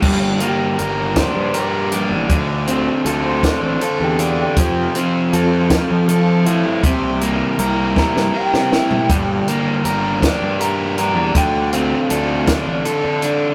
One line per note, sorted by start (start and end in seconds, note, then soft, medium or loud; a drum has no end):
0.02 0.32 G1 medium
0.02 0.78 G2 medium
0.02 0.79 D3 medium
0.02 0.42 G3 medium
0.02 0.41 A#3 medium
0.02 0.41 D4 medium
0.02 0.40 G4 medium
0.02 kick loud
0.02 crash loud
0.40 0.77 G3 medium
0.40 0.77 A#3 medium
0.40 0.79 D4 medium
0.40 0.79 G4 medium
0.40 0.78 G4 medium
0.40 closed hi-hat medium
0.78 1.23 G1 medium
0.78 1.16 G3 medium
0.78 1.16 A#3 medium
0.78 1.15 D4 medium
0.78 1.15 G4 medium
0.78 1.53 A#4 medium
0.78 1.17 A#4 medium
0.78 closed hi-hat medium
1.16 1.53 G3 medium
1.16 1.54 A#3 medium
1.16 1.55 D4 medium
1.16 1.56 G4 medium
1.16 1.55 C5 medium
1.16 kick medium
1.16 snare loud
1.16 closed hi-hat medium
1.36 2.12 G2 medium
1.54 1.94 G3 medium
1.54 1.93 A#3 medium
1.54 1.93 D4 medium
1.54 1.92 G4 medium
1.54 2.30 A#4 medium
1.54 2.66 D5 medium
1.54 closed hi-hat medium
1.92 2.29 G3 soft
1.92 2.29 A#3 medium
1.92 2.29 D4 medium
1.92 2.28 G4 medium
1.92 closed hi-hat medium
2.10 2.25 A1 medium
2.30 2.88 D2 loud
2.30 3.04 D3 medium
2.30 2.70 A3 medium
2.30 2.68 D4 loud
2.30 2.67 F4 loud
2.30 kick loud
2.30 closed hi-hat medium
2.66 3.06 A3 medium
2.66 4.95 C4 medium
2.66 3.06 D4 medium
2.66 3.07 F4 medium
2.66 3.22 C5 medium
2.66 closed hi-hat medium
3.05 3.49 D2 medium
3.05 3.80 D3 medium
3.05 3.44 A3 medium
3.05 3.43 D4 medium
3.05 3.42 F4 medium
3.05 3.81 A4 medium
3.05 closed hi-hat medium
3.26 3.62 C5 medium
3.43 3.81 A3 medium
3.43 3.82 D4 medium
3.43 3.83 F4 medium
3.43 kick medium
3.43 snare loud
3.43 closed hi-hat medium
3.61 3.76 A1 medium
3.61 4.00 C5 medium
3.81 4.55 D3 medium
3.81 4.20 A3 medium
3.81 4.19 D4 medium
3.81 4.18 F4 medium
3.81 4.57 A4 medium
3.81 closed hi-hat medium
4.00 4.43 E2 medium
4.00 4.38 G4 medium
4.19 4.56 A3 medium
4.19 4.56 D4 medium
4.19 4.55 F4 medium
4.19 closed hi-hat medium
4.41 4.95 G4 medium
4.57 4.86 F2 loud
4.57 5.33 F2 medium
4.57 5.33 C3 medium
4.57 4.95 F3 medium
4.57 4.95 A3 loud
4.57 4.95 C4 medium
4.57 4.93 F4 medium
4.57 kick loud
4.57 closed hi-hat loud
4.95 5.31 F3 medium
4.95 5.32 A3 medium
4.95 5.34 C4 medium
4.95 5.33 F4 medium
4.95 6.28 F4 medium
4.95 closed hi-hat medium
5.32 5.76 F2 loud
5.32 5.71 F3 medium
5.32 5.71 A3 medium
5.32 5.70 C4 medium
5.32 5.69 F4 medium
5.32 6.07 A4 medium
5.32 closed hi-hat medium
5.70 6.06 F3 medium
5.70 6.07 A3 medium
5.70 6.08 C4 medium
5.70 6.08 F4 medium
5.70 kick medium
5.70 snare loud
5.70 closed hi-hat medium
5.90 6.65 F3 medium
6.08 6.47 F3 medium
6.08 6.46 A3 medium
6.08 6.46 C4 medium
6.08 6.45 F4 medium
6.08 6.84 A4 medium
6.08 closed hi-hat medium
6.46 6.83 F3 medium
6.46 6.82 A3 medium
6.46 6.82 C4 medium
6.46 6.84 E4 medium
6.46 6.82 F4 medium
6.46 closed hi-hat medium
6.65 6.79 G2 medium
6.83 7.41 C2 loud
6.83 7.59 C3 medium
6.83 7.58 G3 medium
6.83 7.23 A#3 medium
6.83 7.21 E4 medium
6.83 7.21 G4 loud
6.83 kick loud
6.83 closed hi-hat medium
7.21 7.59 A#3 medium
7.21 7.59 E4 medium
7.21 7.61 G4 medium
7.21 closed hi-hat medium
7.58 8.02 C2 medium
7.58 8.33 G3 medium
7.58 7.97 A#3 medium
7.58 7.96 E4 medium
7.58 7.95 G4 medium
7.58 8.33 A#4 medium
7.58 closed hi-hat medium
7.96 8.34 A#3 soft
7.96 8.34 E4 medium
7.96 8.35 G4 medium
7.96 8.35 A#5 medium
7.96 kick medium
7.96 snare medium
8.16 8.30 G2 medium
8.16 snare medium
8.34 9.07 G3 medium
8.34 8.72 A#3 medium
8.34 8.71 E4 medium
8.34 8.70 G4 medium
8.34 9.10 A#4 medium
8.34 10.57 G5 loud
8.53 8.97 C3 medium
8.53 snare medium
8.71 9.08 A#3 medium
8.71 9.08 E4 medium
8.71 9.07 G4 medium
8.71 snare medium
8.91 floor tom medium
9.09 9.39 G1 medium
9.09 9.85 G2 medium
9.09 9.85 D3 medium
9.09 9.48 G3 loud
9.09 9.47 A#3 medium
9.09 9.47 D4 medium
9.09 9.45 G4 loud
9.09 kick loud
9.09 closed hi-hat loud
9.47 9.83 G3 medium
9.47 9.84 A#3 medium
9.47 9.85 D4 medium
9.47 9.85 G4 medium
9.47 closed hi-hat medium
9.84 10.28 G1 medium
9.84 10.22 G3 medium
9.84 10.22 A#3 medium
9.84 10.21 D4 medium
9.84 10.20 G4 medium
9.84 10.60 A#4 medium
9.84 closed hi-hat medium
10.22 10.58 G3 medium
10.22 10.58 A#3 medium
10.22 10.60 D4 medium
10.22 10.60 G4 medium
10.22 kick medium
10.22 snare loud
10.22 closed hi-hat loud
10.42 11.16 G2 medium
10.59 10.98 G3 medium
10.59 10.98 A#3 medium
10.59 10.97 D4 medium
10.59 10.96 G4 medium
10.59 11.36 A#4 medium
10.59 10.98 A#5 loud
10.59 closed hi-hat medium
10.97 11.34 G3 medium
10.97 11.34 A#3 medium
10.97 11.33 D4 medium
10.97 11.33 G4 medium
10.97 11.35 A#5 medium
10.97 closed hi-hat medium
11.16 11.31 E2 loud
11.34 11.93 D2 loud
11.34 12.08 D3 medium
11.34 11.74 A3 medium
11.34 11.72 D4 loud
11.34 11.72 F4 loud
11.34 11.73 G5 medium
11.34 kick loud
11.34 closed hi-hat loud
11.72 12.10 A3 medium
11.72 13.54 C4 medium
11.72 12.10 D4 medium
11.72 12.11 F4 medium
11.72 12.10 F5 medium
11.72 closed hi-hat medium
12.09 12.54 D2 medium
12.09 12.84 D3 medium
12.09 12.48 A3 medium
12.09 12.47 D4 medium
12.09 12.46 F4 medium
12.09 12.84 A4 medium
12.09 13.54 D5 loud
12.09 closed hi-hat medium
12.47 12.85 A3 medium
12.47 12.85 D4 medium
12.47 12.86 F4 medium
12.47 kick medium
12.47 snare loud
12.47 closed hi-hat medium
12.67 12.81 A1 medium
12.85 13.54 D3 medium
12.85 13.24 A3 medium
12.85 13.23 D4 medium
12.85 13.22 F4 medium
12.85 13.54 A4 medium
12.85 closed hi-hat medium
13.04 13.47 D3 medium
13.22 13.54 A3 medium
13.22 13.54 D4 medium
13.22 13.54 F4 medium
13.22 closed hi-hat medium